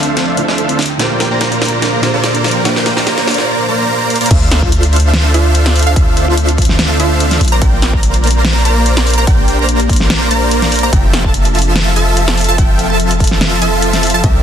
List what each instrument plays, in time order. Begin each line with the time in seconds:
Already playing: ambient pad D2 D3 F3 C4, grand piano D3 A3 F4 C5, supersaw synth D4 A4 C5 E5 F5, riser
0.03 closed hi-hat
0.07 synth arpeggio sound D4
0.17 synth arpeggio sound C4, snare, closed hi-hat
0.28 synth arpeggio sound D5
0.36 grand piano D3 A3 E4 F4 C5, synth arpeggio sound C5, closed hi-hat
0.48 supersaw synth D4 A4 C5 E5 F5, synth arpeggio sound D5, snare
0.58 synth arpeggio sound A4, closed hi-hat
0.69 synth arpeggio sound C4, closed hi-hat
0.79 ambient pad A#2 F3 D4 G4, synth arpeggio sound D4, snare, closed hi-hat
0.82 closed hi-hat
0.86 synth arpeggio sound G5, closed hi-hat
0.97 grand piano A#2 A#3 D4 G4 C5, supersaw synth A#3 A#4 C5 D5 G5, synth arpeggio sound D4, snare, closed hi-hat
1.10 synth arpeggio sound A#4
1.20 synth arpeggio sound A#4, snare, closed hi-hat
1.31 supersaw synth A#3 A#4 C5 D5 A#5, synth arpeggio sound G5
1.41 synth arpeggio sound G4, snare, closed hi-hat
1.52 synth arpeggio sound D5, closed hi-hat
1.61 synth arpeggio sound D4, snare, closed hi-hat
1.65 closed hi-hat
1.68 synth arpeggio sound F4, closed hi-hat
1.82 synth arpeggio sound D4, snare, closed hi-hat
1.93 synth arpeggio sound F5
2.01 grand piano A#2 A#3 D4 G4, synth arpeggio sound D5, snare, closed hi-hat
2.05 grand piano C5
2.14 supersaw synth A#3 A#4 C5 D5 A#5, synth arpeggio sound F5
2.23 synth arpeggio sound A#4, snare, closed hi-hat
2.34 synth arpeggio sound D4, closed hi-hat
2.44 synth arpeggio sound D4, snare, closed hi-hat
2.48 closed hi-hat
2.51 synth arpeggio sound G5, closed hi-hat
2.63 grand piano A#2 A#3 D4 G4 C5, supersaw synth A#3 A#4 C5 D5 G5, synth arpeggio sound D4, snare, closed hi-hat
2.76 synth arpeggio sound A#4, snare
2.86 synth arpeggio sound A#4, snare, closed hi-hat
2.97 supersaw synth A#3 A#4 C5 D5 A#5, synth arpeggio sound G5, snare
3.06 synth arpeggio sound G4, snare, closed hi-hat
3.17 synth arpeggio sound D5, snare, closed hi-hat
3.27 synth arpeggio sound D4, snare, closed hi-hat
3.31 closed hi-hat
3.34 synth arpeggio sound F4, closed hi-hat
3.38 snare
3.68 supersaw synth A#3 A#4 C5 D5 A#5
4.10 closed hi-hat
4.16 closed hi-hat
4.21 supersaw synth A#3 A#4 C5 D5 A#5, closed hi-hat
4.26 closed hi-hat
4.31 808-style bass D2, ambient pad D3 A3 C4 F4, supersaw synth A4, synth pluck F5, kick, closed hi-hat, crash
4.51 snare, closed hi-hat
4.62 supersaw synth D4 A4 C5 F5, synth pluck F4, kick
4.72 closed hi-hat
4.83 closed hi-hat
4.93 closed hi-hat
4.96 closed hi-hat
5.00 closed hi-hat
5.14 snare, closed hi-hat
5.34 supersaw synth D4 A4 C5 E5 F5, synth pluck F4, closed hi-hat
5.55 closed hi-hat
5.66 snare, closed hi-hat
5.76 closed hi-hat, open hi-hat
5.83 supersaw synth D4 A4 C5 E5 F5, closed hi-hat
5.87 synth pluck F5
5.96 supersaw synth D4 A4 C5 E5 F5, synth pluck F5, kick, closed hi-hat
6.17 closed hi-hat
6.28 supersaw synth D4 A4 C5 E5 F5, synth pluck F4
6.37 closed hi-hat
6.49 closed hi-hat
6.58 kick, closed hi-hat
6.62 closed hi-hat
6.65 closed hi-hat
6.69 snare
6.79 snare, closed hi-hat
7.00 supersaw synth D4 A4 C5 E5 F5, synth pluck F4, closed hi-hat
7.20 closed hi-hat
7.31 snare, closed hi-hat
7.41 808-style bass A#1, ambient pad A#3 D4 G4, closed hi-hat, open hi-hat
7.48 closed hi-hat
7.52 supersaw synth A#3 A#4 C5 D5 A#5, synth pluck A#5
7.62 supersaw synth A#3 A#4 C5 D5, synth pluck G5, kick, closed hi-hat
7.82 snare, closed hi-hat
7.93 supersaw synth A#3 A#4 C5 D5 A#5, synth pluck A#5, kick
8.03 closed hi-hat
8.14 closed hi-hat
8.24 closed hi-hat
8.27 closed hi-hat
8.31 closed hi-hat
8.45 snare, closed hi-hat
8.65 supersaw synth A#3 A#4 C5 D5 A#5, synth pluck A#5, closed hi-hat
8.86 closed hi-hat
8.97 snare, closed hi-hat
9.07 closed hi-hat, open hi-hat
9.14 supersaw synth A#3 C5 D5 A#5, closed hi-hat
9.18 supersaw synth A#4, synth pluck A#5
9.27 supersaw synth G5, synth pluck G5, kick, closed hi-hat
9.48 closed hi-hat
9.59 supersaw synth A#3 A#4 C5 D5 A#5, synth pluck A#5
9.69 closed hi-hat
9.80 closed hi-hat
9.89 kick, closed hi-hat
9.93 closed hi-hat
9.96 closed hi-hat
10.00 snare
10.10 snare, closed hi-hat
10.31 supersaw synth A#3 A#4 C5 D5 A#5, synth pluck A#5, closed hi-hat
10.51 closed hi-hat
10.62 snare, closed hi-hat
10.72 closed hi-hat, open hi-hat
10.79 closed hi-hat
10.83 supersaw synth A#3 A#4 C5 D5 A#5, synth pluck A#5
10.93 808-style bass F1, ambient pad F3 C4 A4 E5, supersaw synth F3 F4 A4 E5 G5, synth pluck G5, kick, closed hi-hat
11.13 snare, closed hi-hat
11.24 supersaw synth F3 F4 A4 E5 A5, synth pluck A5, kick
11.34 closed hi-hat
11.45 closed hi-hat
11.55 closed hi-hat
11.59 closed hi-hat
11.62 closed hi-hat
11.76 snare, closed hi-hat
11.96 supersaw synth F3 F4 A4 E5 A5, synth pluck A5, closed hi-hat
12.17 closed hi-hat
12.28 snare, closed hi-hat
12.38 closed hi-hat, open hi-hat
12.44 closed hi-hat
12.48 supersaw synth F3 F4 A4 E5 A5, synth pluck A5
12.58 supersaw synth F3 F4 A4 E5 G5, synth pluck G5, kick, closed hi-hat
12.79 closed hi-hat
12.90 supersaw synth F3 F4 A4 E5 A5, synth pluck A5
13.00 closed hi-hat
13.11 closed hi-hat
13.20 kick, closed hi-hat
13.24 closed hi-hat
13.27 snare, closed hi-hat
13.41 snare, closed hi-hat
13.62 supersaw synth F3 F4 A4 E5 A5, synth pluck A5, closed hi-hat
13.82 closed hi-hat
13.93 snare, closed hi-hat
14.03 closed hi-hat, open hi-hat
14.10 closed hi-hat
14.14 supersaw synth F3 F4 A4 E5 A5, synth pluck A5
14.23 808-style bass C2, ambient pad C3 G3 A#3, supersaw synth C4 G4 D5, synth pluck E5, kick, closed hi-hat